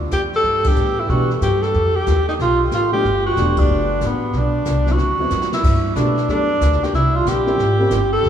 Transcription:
Already playing: D2
0.11 E2 G4, kick, snare, hi-hat pedal
0.33 A4, snare
0.43 G2, brush sweep, kick, snare
0.64 E3 G3 B3 D4 G4, kick, ride
0.76 A2, hi-hat pedal
0.99 E4
1.09 B2 E3 G3 B3 D4 F#4, brush sweep, kick, snare
1.30 snare
1.41 G2 G4, kick, snare, hi-hat pedal
1.62 A4, snare
1.74 F2, brush sweep, kick, snare
1.96 G4
2.06 D#2, kick, snare, hi-hat pedal
2.28 D#4, snare
2.39 B1 F4, brush sweep, kick, snare
2.71 A1 F4, kick, snare, hi-hat pedal
2.92 F#3 A3 B3 D4 G4
3.04 G1, brush sweep, kick, snare
3.26 F#4
3.35 E1 F#3 A3 B3 D4, kick, snare, hi-hat pedal
3.57 D4, kick, ride
3.69 F#1, brush sweep
4.01 A1, kick, snare, hi-hat pedal
4.06 B3
4.33 B1, brush sweep, kick, snare
4.38 D4
4.65 C2, kick, snare, hi-hat pedal
4.86 F#3 B3 C4 E4, snare
4.92 F#4
4.98 D2, brush sweep, kick, snare
5.19 F#3 B3 C4 E4
5.30 F#2, snare, hi-hat pedal
5.41 snare
5.52 E4, snare
5.64 G2, brush sweep, kick, snare, crash
5.96 B2 G3 A3 B3 D4 F#4, kick, snare, hi-hat pedal
6.17 snare
6.28 F#2 G3 A3 B3 D4 A4, brush sweep, kick, snare
6.61 D2, kick, snare, hi-hat pedal
6.72 snare
6.81 G4, muted upright bass stroke, snare
6.93 C2 E4, brush sweep, kick, snare
7.16 F4
7.25 A#1 G4, kick, snare, hi-hat pedal
7.46 G3 A#3 C4 C#4 E4, snare
7.58 G#1, brush sweep, kick, snare
7.79 G3 A#3 C4 C#4 G4
7.90 G1, kick, snare, hi-hat pedal
8.13 A4
8.23 F1, brush sweep, kick, snare

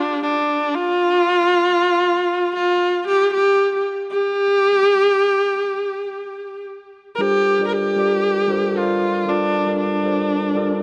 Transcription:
Already playing: D4
0.23 D4
0.74 F4
2.56 F4
3.08 G4
3.34 G4
4.11 G4
7.15 G3 D4 A#4
7.20 F4 G4 A4 A#4 C5
7.59 G3 D4 F4 A4 A#4 D5
7.67 A#4
7.73 G4
7.96 G3 D4 F4 A4 A#4 D5
8.48 G3 D4 F4 A4 A#4 C5
8.74 G3 D4 F4 A4 A#4 C5
8.83 D5
9.26 G3 D4 F4 A4 A#4 D5
9.67 G3 D4 F4 A4 A#4 D5
9.80 D4
10.03 G3 D4 F4 A4 A#4 C5
10.55 G3 D4 F4 A4 A#4 D5

